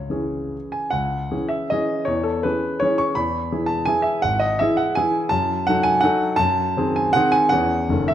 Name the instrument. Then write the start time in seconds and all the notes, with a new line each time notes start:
grand piano
Already playing: C#2 C#5
0.10 E3 C#4 G#4
0.72 G#5
0.90 C#2 F#5
1.31 E3 C#4 G#4
1.49 E5
1.70 E3 C#4 G#4 D#5
2.05 E2 C#5
2.23 A4
2.43 E3 C#4 G#4 B4
2.80 E3 C#4 G#4 C#5
2.98 C#6
3.15 E2 B5
3.52 E3 E4 G#4
3.66 A5
3.85 E3 E4 G#4 G#5
4.02 E5
4.22 G#1 F#5
4.39 D#5
4.59 E3 E4 G#4 E5
4.77 F#5
4.95 E3 E4 G#4 G#5
5.29 F#2 A5
5.67 F#3 D#4 A4 F#5
5.83 G#5
6.01 F#3 D#4 A4 F#5
6.36 F#2 A5
6.77 D#3 C4 G#4
6.96 G#5
7.13 D#3 C4 G#4 F#5
7.32 G#5
7.49 E2 E3 C#4 G#4 F#5
7.89 F#1 D#3 C#4 A4
8.08 E5